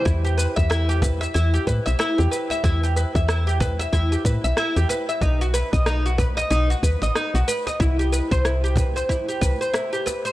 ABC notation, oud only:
X:1
M:4/4
L:1/16
Q:"Swing 16ths" 1/4=93
K:Em
V:1 name="Oud"
E G B e E G B e E G B e E G B e | E G B e E G B e E G B e E G B e | ^D F B ^d D F B d D F B d D F B d | E G B c E G B c E G B c E G B c |]